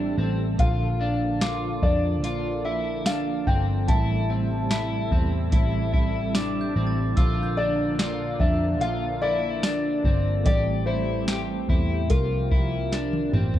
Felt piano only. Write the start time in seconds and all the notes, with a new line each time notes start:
0.59 F5
1.83 D5
2.65 E5
3.06 F5
3.47 G5
3.88 A5
7.57 D5
8.40 E5
8.81 F5
9.22 D5
10.46 D5
10.86 C5
12.10 A#4